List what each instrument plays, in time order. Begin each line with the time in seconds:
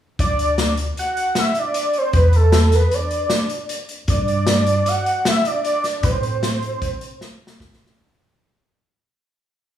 0.19 upright bass D2, analog synth lead D5, kick, closed hi-hat
0.39 closed hi-hat
0.58 snare, closed hi-hat
0.77 closed hi-hat
0.97 analog synth lead F#5, closed hi-hat
1.17 closed hi-hat
1.35 analog synth lead E5, snare, closed hi-hat
1.49 analog synth lead E5
1.55 closed hi-hat
1.59 analog synth lead D5
1.74 closed hi-hat
1.93 closed hi-hat
1.98 analog synth lead C5
2.13 upright bass E2, analog synth lead B4, kick, closed hi-hat
2.33 analog synth lead A4, closed hi-hat
2.52 snare, closed hi-hat
2.72 analog synth lead B4, snare, closed hi-hat
2.91 analog synth lead D5, closed hi-hat
3.11 closed hi-hat
3.30 snare, closed hi-hat
3.50 closed hi-hat
3.69 closed hi-hat
3.89 closed hi-hat
4.08 upright bass G2, analog synth lead D5, kick, closed hi-hat
4.28 closed hi-hat
4.47 snare, closed hi-hat
4.67 closed hi-hat
4.86 analog synth lead F#5, closed hi-hat
5.06 closed hi-hat
5.25 analog synth lead E5, snare, closed hi-hat
5.45 analog synth lead D5, closed hi-hat
5.65 closed hi-hat
5.84 snare, closed hi-hat
6.03 upright bass A2, analog synth lead C5, kick, closed hi-hat
6.23 closed hi-hat
6.43 snare, closed hi-hat
6.62 closed hi-hat
6.82 kick, closed hi-hat
7.01 closed hi-hat
7.21 snare
7.47 snare
7.60 kick, snare
7.73 snare
7.86 snare